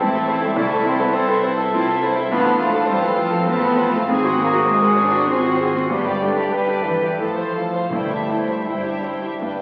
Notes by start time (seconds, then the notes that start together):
Already playing: A1 C4 E4 A4 B4 C5
0.00 A1 A3 C4 E4 C5 A5
0.14 A4 E5
0.28 E4 C5 A5
0.41 G3 E4 A4 E5 G5
0.55 C2 C3 A3 E4 C5 A5
0.68 A4 E5
0.73 A4
0.83 C4 E4 C5 A5 C6
0.98 B3 A4 E5 B5
1.11 E4 A4 C5
1.16 C2 C4 C5 A5 C6
1.27 A4 B4
1.32 A4 E5
1.43 E4 C5 A5
1.58 A4 E5
1.73 C2 C4 E4 F4 C5 A5
1.88 A4 E5
2.02 E4 C5 A5
2.16 E4 A4 E5
2.31 A1 A2 B3 D4 F4 A5 B5
2.35 C5
2.45 A4 F5
2.58 A3 F4 A5
2.63 C5
2.73 A4 F5
2.85 G3 C4 F4 C5
2.90 A1 G3 C5 G5 A5
3.01 E3 A4 B4 E5
3.05 E3 A4 F5
3.15 F3 F4 C5
3.19 F3 F5 A5
3.31 A4 F5
3.47 A1 B3 C4 F4 C5 A5
3.52 B5
3.60 A4
3.66 F5
3.77 F4 C5 A5
3.92 A3 F4 A4 A5
3.97 F5
4.05 G#2 C4
4.10 G#1 G#4 C5 G#5 C6
4.24 F#4 G#4 F#5
4.36 A#3 C4 G#4
4.40 A#3 C5 G#5 A#5
4.54 F#4 G#4 F#5
4.65 C5
4.69 G#1 G#3 G#4 C5 G#5
4.82 F#4 A#4 F#5
4.87 G#4
4.95 D4 G#4 C5 G#5
5.02 C5 D6
5.11 F#4
5.15 G#4 F#5
5.26 G#1 C4 F4 C6
5.30 C4 G#4 C5 G#5
5.42 F#4 F#5
5.47 G#4
5.57 G#4 C5
5.61 C5 G#5
5.74 C4 F#4 F#5
5.80 G#4
5.90 G1 G2 B3 D4 G4 B4 G5 B5
6.06 G3 G4 D5 G5
6.20 A3 D4 G5 A5
6.27 B4
6.36 G4 D5
6.41 D5
6.50 G1 G3 D4 B4 G5
6.55 G3 B4
6.69 G4 A4 D5
6.83 E3 D4 B4 E5 G5
6.88 B4
7.01 G4 D5
7.18 A1 A2 F3 A4 C5 F5 A5
7.22 A4
7.36 A4 C5
7.40 F5
7.54 F4 A4 C5 A5
7.74 A4 C5 F5
7.90 G1 G2 A3 E4 A5
7.95 C5 G5
8.12 G4 C5 E5
8.30 E4 C5 G5
8.49 G4 C5 E5
8.65 G1 G3 E4 C5 G5
8.85 D4 G4 E5
9.03 E4 C5 G5
9.22 E4 G4 E5
9.41 G1 G2 D4 B4 G5